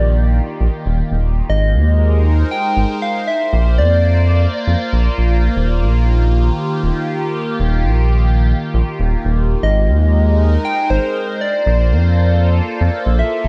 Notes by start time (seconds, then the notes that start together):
Already playing: A#1 D#3 A#3 F4 G4 D5
0.61 A#1
0.86 D#1
1.11 D#1
1.50 G#1 G#3 D#5
1.72 D#2 D#4 A#4 C5
2.51 G5
2.77 G#1
3.02 F5
3.28 A#3 E5
3.37 D5
3.51 A#1 F4
3.78 F2 D5
4.67 F2
4.93 A#1
5.18 A#1
5.56 D#1 D#3
5.82 A#1
6.11 G4
6.84 D#1
7.60 D#1
7.85 A#1
8.74 A#1
9.00 D#1
9.25 D#1
9.63 G#1 G#3 D#5
9.88 D#2 D#4 A#4
10.10 C5
10.65 G5
10.90 G#1 C5
11.41 A#3 D5
11.48 F4
11.67 A#1
11.80 A4
11.92 F2
12.81 F2
13.06 A#1
13.19 E5
13.45 F1